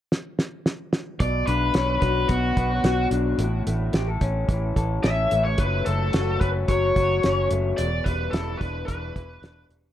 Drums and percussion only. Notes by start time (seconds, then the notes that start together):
0.12 snare
0.39 snare
0.66 snare
0.93 snare
1.20 kick, closed hi-hat
1.47 closed hi-hat
1.74 snare, closed hi-hat
2.02 kick, closed hi-hat
2.29 kick, closed hi-hat
2.57 kick, closed hi-hat
2.84 snare, closed hi-hat
3.11 closed hi-hat
3.39 closed hi-hat
3.67 closed hi-hat
3.93 snare, closed hi-hat
4.21 kick, closed hi-hat
4.49 kick, closed hi-hat
4.76 kick, closed hi-hat
5.03 snare, closed hi-hat
5.31 closed hi-hat
5.58 kick, closed hi-hat
5.86 closed hi-hat
6.13 snare, closed hi-hat
6.41 kick, closed hi-hat
6.68 kick, closed hi-hat
6.96 kick, closed hi-hat
7.23 snare, closed hi-hat
7.51 closed hi-hat
7.78 closed hi-hat
8.06 kick, closed hi-hat
8.33 snare, closed hi-hat
8.61 kick, closed hi-hat
8.88 kick, closed hi-hat
9.16 kick, closed hi-hat
9.43 snare, closed hi-hat
9.70 closed hi-hat